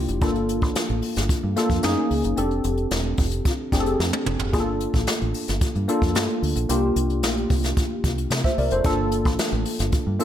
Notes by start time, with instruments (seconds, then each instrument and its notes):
Already playing: tine electric piano A#3 D4 E4 F4 G4
0.08 fingered electric bass F1, closed hi-hat
0.21 fingered electric bass G1, tine electric piano A#3 D4 F4 A4, kick, closed hi-hat
0.35 closed hi-hat
0.49 closed hi-hat
0.62 fingered electric bass A1, kick, closed hi-hat
0.75 snare, closed hi-hat
0.89 fingered electric bass A1, closed hi-hat
1.02 open hi-hat
1.16 fingered electric bass G1, snare, closed hi-hat
1.29 kick, closed hi-hat
1.44 fingered electric bass G2
1.56 tine electric piano A#3 D4 F4 A4, snare, closed hi-hat
1.70 fingered electric bass F2, kick, closed hi-hat
1.83 fingered electric bass F#2, tine electric piano A#3 C#4 D#4 G#4, snare, closed hi-hat
2.11 fingered electric bass C#2, open hi-hat
2.24 fingered electric bass F#1, closed hi-hat
2.37 fingered electric bass F1, tine electric piano C4 D4 G4 A4, closed hi-hat
2.51 closed hi-hat
2.64 fingered electric bass F1, closed hi-hat
2.77 closed hi-hat
2.91 fingered electric bass E1, snare, closed hi-hat
3.17 fingered electric bass F1, kick, open hi-hat
3.32 closed hi-hat
3.45 kick, closed hi-hat
3.72 fingered electric bass F1, tine electric piano C4 D4 G4 G#4, kick, snare, closed hi-hat
3.80 tine electric piano A4
3.86 closed hi-hat
3.99 fingered electric bass F2, snare
4.13 high tom
4.26 fingered electric bass F1, mid tom
4.39 fingered electric bass F1, floor tom
4.53 fingered electric bass G1, tine electric piano A#3 D4 F4 G#4, kick, closed hi-hat
4.60 tine electric piano A4
4.80 closed hi-hat
4.93 fingered electric bass A1, kick, closed hi-hat
5.07 snare, closed hi-hat
5.21 fingered electric bass A1, closed hi-hat
5.34 open hi-hat
5.48 fingered electric bass G1, snare, closed hi-hat
5.61 muted fingered electric bass stroke, kick, closed hi-hat
5.75 fingered electric bass G2, closed hi-hat
5.88 tine electric piano A#3 D4 F4 A4, closed hi-hat
6.02 fingered electric bass F2, kick, closed hi-hat
6.15 fingered electric bass G2, snare, closed hi-hat
6.29 closed hi-hat
6.42 fingered electric bass D2, open hi-hat
6.56 fingered electric bass A#1, closed hi-hat
6.69 fingered electric bass C2, tine electric piano A#3 D4 F4 G4, closed hi-hat
6.96 fingered electric bass C2, closed hi-hat
7.10 closed hi-hat
7.23 fingered electric bass A#1, snare, closed hi-hat
7.37 closed hi-hat
7.50 fingered electric bass C2, kick, open hi-hat
7.64 snare, closed hi-hat
7.77 kick, closed hi-hat
8.04 fingered electric bass C2, kick, closed hi-hat
8.18 closed hi-hat
8.30 fingered electric bass C3, snare, closed hi-hat
8.44 tine electric piano C5 E5, kick, closed hi-hat
8.58 fingered electric bass C2, tine electric piano A#4 D5, open hi-hat
8.71 fingered electric bass F1, tine electric piano A4 C5, closed hi-hat
8.84 fingered electric bass G1, tine electric piano A#3 D4 F4 A4, kick, closed hi-hat
9.12 closed hi-hat
9.25 fingered electric bass A1, kick, closed hi-hat
9.39 snare, closed hi-hat
9.52 fingered electric bass A1, closed hi-hat
9.65 open hi-hat
9.79 fingered electric bass G1, snare, closed hi-hat
9.92 kick, closed hi-hat
10.07 fingered electric bass G2
10.19 tine electric piano A#3 D4 F4 A4, closed hi-hat